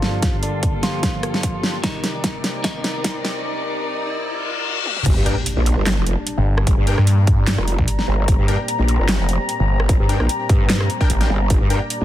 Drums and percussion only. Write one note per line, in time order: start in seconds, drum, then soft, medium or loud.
0.02 snare medium
0.23 kick medium
0.23 snare medium
0.23 closed hi-hat medium
0.43 closed hi-hat medium
0.63 kick medium
0.63 closed hi-hat medium
0.83 snare medium
0.83 closed hi-hat medium
1.03 kick medium
1.03 snare medium
1.03 closed hi-hat medium
1.23 cross-stick medium
1.23 closed hi-hat medium
1.34 snare medium
1.43 kick medium
1.43 closed hi-hat medium
1.63 snare medium
1.84 kick medium
1.84 snare medium
1.84 closed hi-hat medium
2.04 snare medium
2.04 closed hi-hat soft
2.24 kick medium
2.24 snare medium
2.24 closed hi-hat medium
2.44 snare medium
2.44 closed hi-hat medium
2.64 kick loud
2.64 snare medium
2.64 closed hi-hat medium
2.84 snare medium
2.84 closed hi-hat medium
3.04 kick medium
3.04 snare medium
3.04 closed hi-hat medium
3.25 snare medium
4.86 high tom medium
4.97 mid tom medium
5.06 kick loud
5.06 closed hi-hat medium
5.06 crash loud
5.26 closed hi-hat medium
5.46 closed hi-hat medium
5.66 closed hi-hat medium
5.86 snare loud
5.86 clap medium
5.86 closed hi-hat medium
6.07 closed hi-hat medium
6.27 closed hi-hat medium
6.58 cross-stick medium
6.67 kick loud
6.67 closed hi-hat medium
6.87 closed hi-hat medium
6.98 cross-stick medium
7.07 closed hi-hat medium
7.27 kick loud
7.27 closed hi-hat medium
7.47 snare loud
7.47 clap loud
7.47 closed hi-hat medium
7.58 cross-stick medium
7.68 closed hi-hat medium
7.79 kick medium
7.88 closed hi-hat medium
7.99 snare soft
8.28 kick loud
8.28 closed hi-hat medium
8.48 closed hi-hat medium
8.68 closed hi-hat medium
8.88 closed hi-hat soft
9.09 snare loud
9.09 clap medium
9.09 closed hi-hat medium
9.29 closed hi-hat medium
9.49 closed hi-hat medium
9.80 cross-stick medium
9.89 kick loud
9.89 closed hi-hat medium
10.09 closed hi-hat soft
10.20 cross-stick medium
10.29 closed hi-hat medium
10.49 kick loud
10.49 closed hi-hat medium
10.70 snare loud
10.70 clap medium
10.70 closed hi-hat medium
10.80 cross-stick medium
10.90 closed hi-hat soft
11.01 kick medium
11.10 closed hi-hat medium
11.21 snare soft
11.21 closed hi-hat soft
11.50 kick loud
11.50 closed hi-hat medium
11.70 closed hi-hat medium
11.90 closed hi-hat medium